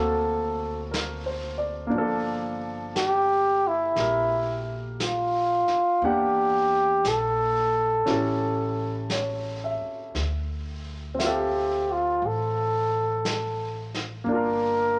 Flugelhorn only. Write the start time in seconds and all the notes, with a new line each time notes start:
Already playing: A4
2.97 G4
3.67 E4
5.02 F4
6.05 G4
7.08 A4
11.21 G4
11.92 F4
12.26 A4
14.30 A#4